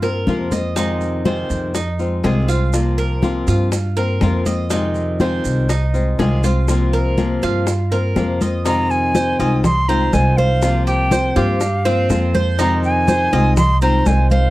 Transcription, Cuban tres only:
0.03 0.50 A#4 medium
0.52 0.76 D#5 medium
0.76 1.24 D#4 medium
1.26 1.74 C5 medium
1.75 2.23 D#4 medium
2.24 2.48 G#4 medium
2.48 2.97 F4 medium
2.98 3.46 A#4 medium
3.48 3.96 F4 medium
3.97 4.45 A#4 medium
4.46 4.70 D#5 medium
4.71 5.19 D#4 medium
5.21 5.68 C5 medium
5.70 6.18 D#4 medium
6.19 6.43 G#4 medium
6.44 6.92 F4 medium
6.93 7.41 A#4 medium
7.43 7.91 F4 medium
7.92 8.40 A#4 medium
8.41 8.65 D#5 medium
8.66 9.14 D#4 medium
9.15 9.39 C5 medium
9.40 9.87 D#5 medium
9.89 10.37 C5 medium
10.38 10.86 C5 medium
10.87 11.11 G4 medium
11.12 11.36 C5 medium
11.36 11.84 G4 medium
11.85 12.33 C4 medium
12.35 12.58 C5 medium
12.59 13.07 D#4 medium
13.08 13.32 C5 medium
13.33 13.80 D#5 medium
13.82 14.30 C5 medium
14.31 14.50 C5 medium

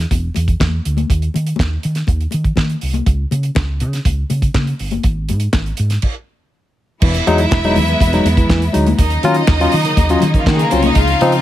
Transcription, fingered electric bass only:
0.11 0.28 E1 loud
0.36 0.53 E2 medium
0.61 0.78 E2 medium
0.86 1.03 D2 medium
1.10 1.27 D#2 loud
1.35 1.52 D#3 loud
1.59 1.76 D#2 loud
1.85 2.02 D#3 loud
2.08 2.25 D#2 loud
2.34 2.51 D#3 medium
2.57 2.75 D#3 loud
2.83 3.00 C2 medium
3.07 3.24 C#2 loud
3.32 3.49 C#3 loud
3.56 3.83 C#2 medium
3.81 3.98 C#3 loud
4.05 4.23 C#2 loud
4.30 4.48 C#3 medium
4.55 4.72 C#3 loud
4.80 4.97 G1 medium
5.04 5.31 G#1 loud
5.29 5.47 G#2 medium
5.54 5.71 G#1 loud
5.79 5.96 G#2 medium
7.02 7.19 E1 loud
7.27 7.44 E2 loud
7.52 7.77 E1 loud
7.76 7.93 E2 loud
8.01 8.18 E1 loud
8.25 8.42 E2 loud
8.50 8.67 E2 loud
8.75 8.92 D2 loud
8.99 9.16 D#2 loud
9.23 9.41 D#3 loud
9.48 9.65 D#2 loud
9.73 9.90 D#3 loud
9.97 10.15 D#2 loud
10.22 10.39 D#3 medium
10.47 10.64 D#3 loud
10.72 10.89 C2 medium
10.96 11.13 C#2 loud
11.21 11.38 C#3 loud

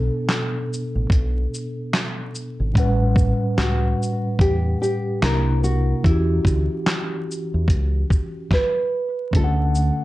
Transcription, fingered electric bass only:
0.95 1.09 A1 medium
1.10 1.46 B1 medium
2.60 2.73 G#1 medium
2.76 3.32 A1 medium
3.58 3.93 C#2 medium
4.39 4.74 E2 medium
5.22 5.92 C2 medium
6.05 6.39 E2 loud
6.45 6.67 D2 medium
7.54 7.67 E2 medium
7.68 8.03 C#2 loud
9.33 9.90 D2 medium

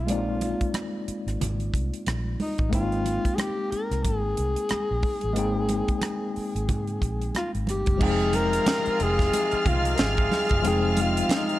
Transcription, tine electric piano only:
0.07 2.68 G#3 medium
0.07 2.68 A#3 medium
0.07 2.69 C4 medium
0.07 2.69 D5 medium
0.12 0.18 D#4 medium
0.18 2.73 F4 medium
2.69 5.31 G#3 medium
2.69 5.32 A#3 medium
2.69 5.33 C4 medium
2.74 5.34 D#4 medium
2.74 5.34 G5 medium
5.33 7.95 G#3 medium
5.33 7.96 A#3 medium
5.33 7.97 C4 medium
5.37 7.97 D#4 medium
5.37 7.98 G5 medium
7.97 10.59 F3 medium
7.97 10.60 G#3 medium
7.97 10.60 C4 medium
8.01 10.61 D#4 medium
8.01 10.62 G5 medium
10.62 11.59 F3 medium
10.62 11.59 G#3 medium
10.62 11.59 C4 medium
10.66 11.59 D#4 medium
10.66 11.59 G5 medium

